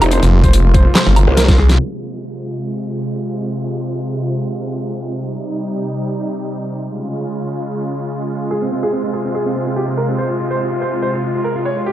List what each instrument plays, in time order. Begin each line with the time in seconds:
Already playing: supersaw synth C3 G#3 A#3
0.02 wobble bass F1, grand piano C4, closed hi-hat, low woodblock
0.11 grand piano C5, closed hi-hat
0.23 detuned saw bass F1, grand piano F4, closed hi-hat
0.32 grand piano F4
0.44 grand piano C5, kick, closed hi-hat
0.53 grand piano F4, closed hi-hat
0.65 detuned saw bass F1, grand piano F4
0.74 grand piano C5, kick, closed hi-hat
0.86 grand piano F4
0.95 grand piano C5, snare, clap, closed hi-hat
1.07 detuned saw bass G1, grand piano F4
1.16 grand piano F4, closed hi-hat, low woodblock
1.28 wobble bass C2, grand piano F4
1.37 grand piano A#4, snare, closed hi-hat
1.48 grand piano F4, kick, snare, closed hi-hat
1.58 detuned saw bass C2, grand piano G#4
1.69 grand piano F4, snare, closed hi-hat
1.79 supersaw synth C3 G#3 F4, crash, downlifter
5.15 supersaw synth G3 D#4
6.83 supersaw synth C#3 G#3 F4
8.51 supersaw synth C3, grand piano G#4
8.62 grand piano C4
8.72 grand piano C4
8.83 grand piano G#4
8.93 grand piano C4
9.04 grand piano C4
9.14 grand piano G#4
9.25 grand piano C4
9.35 grand piano G#4
9.46 grand piano C4
9.55 grand piano C4
9.67 grand piano C4
9.76 grand piano G4
9.88 grand piano C4
9.97 grand piano A#4
10.09 grand piano C4
10.18 grand piano C5
10.30 grand piano F4
10.39 grand piano F4
10.51 grand piano C5
10.61 grand piano F4
10.72 grand piano F4
10.81 grand piano C5
10.93 grand piano F4
11.02 grand piano C5
11.14 grand piano F4
11.23 grand piano F4
11.35 grand piano F4
11.44 grand piano A#4
11.56 grand piano F4
11.65 grand piano C#5
11.77 grand piano F4
11.86 supersaw synth C3 G3 D#4, grand piano G4